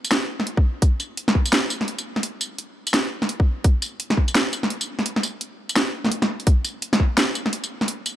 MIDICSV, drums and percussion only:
0, 0, Header, 1, 2, 480
1, 0, Start_track
1, 0, Tempo, 352941
1, 1119, Time_signature, 4, 2, 24, 8
1, 11098, End_track
2, 0, Start_track
2, 0, Title_t, "Drums"
2, 61, Note_on_c, 9, 54, 64
2, 155, Note_on_c, 9, 38, 127
2, 155, Note_on_c, 9, 42, 81
2, 197, Note_off_c, 9, 54, 0
2, 291, Note_off_c, 9, 38, 0
2, 291, Note_off_c, 9, 42, 0
2, 539, Note_on_c, 9, 40, 36
2, 636, Note_on_c, 9, 42, 67
2, 675, Note_off_c, 9, 40, 0
2, 772, Note_off_c, 9, 42, 0
2, 781, Note_on_c, 9, 36, 114
2, 917, Note_off_c, 9, 36, 0
2, 1116, Note_on_c, 9, 42, 77
2, 1118, Note_on_c, 9, 36, 121
2, 1252, Note_off_c, 9, 42, 0
2, 1254, Note_off_c, 9, 36, 0
2, 1356, Note_on_c, 9, 54, 67
2, 1492, Note_off_c, 9, 54, 0
2, 1597, Note_on_c, 9, 42, 62
2, 1733, Note_off_c, 9, 42, 0
2, 1740, Note_on_c, 9, 40, 61
2, 1838, Note_on_c, 9, 36, 62
2, 1876, Note_off_c, 9, 40, 0
2, 1974, Note_off_c, 9, 36, 0
2, 1978, Note_on_c, 9, 54, 66
2, 2076, Note_on_c, 9, 38, 123
2, 2076, Note_on_c, 9, 42, 81
2, 2114, Note_off_c, 9, 54, 0
2, 2212, Note_off_c, 9, 38, 0
2, 2212, Note_off_c, 9, 42, 0
2, 2314, Note_on_c, 9, 54, 65
2, 2450, Note_off_c, 9, 54, 0
2, 2460, Note_on_c, 9, 40, 37
2, 2556, Note_on_c, 9, 42, 63
2, 2596, Note_off_c, 9, 40, 0
2, 2692, Note_off_c, 9, 42, 0
2, 2699, Note_on_c, 9, 54, 69
2, 2835, Note_off_c, 9, 54, 0
2, 2940, Note_on_c, 9, 40, 37
2, 3035, Note_on_c, 9, 42, 76
2, 3076, Note_off_c, 9, 40, 0
2, 3171, Note_off_c, 9, 42, 0
2, 3274, Note_on_c, 9, 54, 71
2, 3410, Note_off_c, 9, 54, 0
2, 3515, Note_on_c, 9, 42, 61
2, 3651, Note_off_c, 9, 42, 0
2, 3898, Note_on_c, 9, 54, 67
2, 3995, Note_on_c, 9, 38, 115
2, 3995, Note_on_c, 9, 42, 78
2, 4034, Note_off_c, 9, 54, 0
2, 4131, Note_off_c, 9, 38, 0
2, 4131, Note_off_c, 9, 42, 0
2, 4379, Note_on_c, 9, 40, 38
2, 4475, Note_on_c, 9, 42, 64
2, 4515, Note_off_c, 9, 40, 0
2, 4611, Note_off_c, 9, 42, 0
2, 4621, Note_on_c, 9, 36, 110
2, 4757, Note_off_c, 9, 36, 0
2, 4956, Note_on_c, 9, 42, 79
2, 4957, Note_on_c, 9, 36, 117
2, 5092, Note_off_c, 9, 42, 0
2, 5093, Note_off_c, 9, 36, 0
2, 5197, Note_on_c, 9, 54, 72
2, 5333, Note_off_c, 9, 54, 0
2, 5436, Note_on_c, 9, 42, 66
2, 5572, Note_off_c, 9, 42, 0
2, 5580, Note_on_c, 9, 40, 66
2, 5677, Note_on_c, 9, 36, 61
2, 5716, Note_off_c, 9, 40, 0
2, 5813, Note_off_c, 9, 36, 0
2, 5819, Note_on_c, 9, 54, 68
2, 5919, Note_on_c, 9, 38, 116
2, 5919, Note_on_c, 9, 42, 79
2, 5955, Note_off_c, 9, 54, 0
2, 6055, Note_off_c, 9, 38, 0
2, 6055, Note_off_c, 9, 42, 0
2, 6158, Note_on_c, 9, 54, 67
2, 6294, Note_off_c, 9, 54, 0
2, 6300, Note_on_c, 9, 40, 39
2, 6397, Note_on_c, 9, 42, 67
2, 6436, Note_off_c, 9, 40, 0
2, 6533, Note_off_c, 9, 42, 0
2, 6540, Note_on_c, 9, 54, 74
2, 6676, Note_off_c, 9, 54, 0
2, 6782, Note_on_c, 9, 40, 39
2, 6879, Note_on_c, 9, 42, 80
2, 6918, Note_off_c, 9, 40, 0
2, 7015, Note_off_c, 9, 42, 0
2, 7022, Note_on_c, 9, 40, 40
2, 7117, Note_on_c, 9, 54, 70
2, 7158, Note_off_c, 9, 40, 0
2, 7253, Note_off_c, 9, 54, 0
2, 7357, Note_on_c, 9, 42, 69
2, 7493, Note_off_c, 9, 42, 0
2, 7741, Note_on_c, 9, 54, 69
2, 7837, Note_on_c, 9, 38, 117
2, 7837, Note_on_c, 9, 42, 83
2, 7877, Note_off_c, 9, 54, 0
2, 7973, Note_off_c, 9, 38, 0
2, 7973, Note_off_c, 9, 42, 0
2, 8221, Note_on_c, 9, 40, 38
2, 8245, Note_off_c, 9, 40, 0
2, 8245, Note_on_c, 9, 40, 31
2, 8271, Note_off_c, 9, 40, 0
2, 8271, Note_on_c, 9, 40, 25
2, 8294, Note_off_c, 9, 40, 0
2, 8294, Note_on_c, 9, 40, 21
2, 8317, Note_on_c, 9, 42, 69
2, 8430, Note_off_c, 9, 40, 0
2, 8453, Note_off_c, 9, 42, 0
2, 8461, Note_on_c, 9, 40, 68
2, 8597, Note_off_c, 9, 40, 0
2, 8701, Note_on_c, 9, 42, 39
2, 8796, Note_off_c, 9, 42, 0
2, 8796, Note_on_c, 9, 42, 84
2, 8798, Note_on_c, 9, 36, 122
2, 8932, Note_off_c, 9, 42, 0
2, 8934, Note_off_c, 9, 36, 0
2, 9037, Note_on_c, 9, 54, 68
2, 9173, Note_off_c, 9, 54, 0
2, 9278, Note_on_c, 9, 42, 70
2, 9414, Note_off_c, 9, 42, 0
2, 9423, Note_on_c, 9, 40, 68
2, 9517, Note_on_c, 9, 36, 63
2, 9559, Note_off_c, 9, 40, 0
2, 9653, Note_off_c, 9, 36, 0
2, 9759, Note_on_c, 9, 38, 120
2, 9759, Note_on_c, 9, 42, 85
2, 9895, Note_off_c, 9, 38, 0
2, 9895, Note_off_c, 9, 42, 0
2, 9998, Note_on_c, 9, 54, 66
2, 10134, Note_off_c, 9, 54, 0
2, 10142, Note_on_c, 9, 40, 41
2, 10239, Note_on_c, 9, 42, 70
2, 10278, Note_off_c, 9, 40, 0
2, 10375, Note_off_c, 9, 42, 0
2, 10385, Note_on_c, 9, 54, 68
2, 10521, Note_off_c, 9, 54, 0
2, 10624, Note_on_c, 9, 40, 40
2, 10717, Note_on_c, 9, 42, 85
2, 10760, Note_off_c, 9, 40, 0
2, 10853, Note_off_c, 9, 42, 0
2, 10958, Note_on_c, 9, 54, 67
2, 11094, Note_off_c, 9, 54, 0
2, 11098, End_track
0, 0, End_of_file